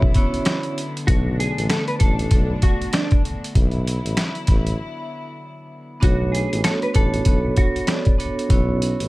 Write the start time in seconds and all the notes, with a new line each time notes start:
Already playing: B1 D3 F#3 B3 E4
0.02 kick
0.14 B3 C#4 E4 F#4 C#5, kick, closed hi-hat
0.34 closed hi-hat
0.45 cross-stick, snare, closed hi-hat
0.63 closed hi-hat
0.78 closed hi-hat
0.97 closed hi-hat
1.07 B1 A3 D4 F#4, kick, closed hi-hat
1.40 G#4, closed hi-hat
1.57 A1, closed hi-hat
1.70 A4, cross-stick, snare, closed hi-hat
1.88 B4, closed hi-hat
1.99 A1 A4, kick, closed hi-hat
2.19 closed hi-hat
2.31 B1, kick, closed hi-hat
2.62 F#4, kick, closed hi-hat
2.82 closed hi-hat
2.93 D4, cross-stick, snare, closed hi-hat
3.11 kick, closed hi-hat
3.25 closed hi-hat
3.44 closed hi-hat
3.55 B1 F#3 E4, kick, closed hi-hat
3.71 closed hi-hat
3.87 closed hi-hat
4.04 A1, closed hi-hat
4.17 cross-stick, snare, closed hi-hat
4.35 closed hi-hat
4.47 A1, kick, snare, closed hi-hat
4.67 closed hi-hat
6.00 B1 A3 B3 D4 F#4 C#5, kick, closed hi-hat
6.32 G#4, closed hi-hat
6.52 A1, closed hi-hat
6.64 A4, cross-stick, snare, closed hi-hat
6.82 B4, closed hi-hat
6.93 A1 B3 D4 F#4 A4 C#5, kick, closed hi-hat
7.14 closed hi-hat
7.25 B1 B3 D4 F#4 A4 C#5, kick, closed hi-hat
7.57 F#4, kick, closed hi-hat
7.76 closed hi-hat
7.87 D4, cross-stick, snare, closed hi-hat
8.05 kick, closed hi-hat
8.18 B3 D4 F#4 A4 C#5, closed hi-hat
8.39 closed hi-hat
8.50 B1 B3 C#4 E4 F#4 C#5, kick, closed hi-hat
8.82 closed hi-hat
8.99 A1, closed hi-hat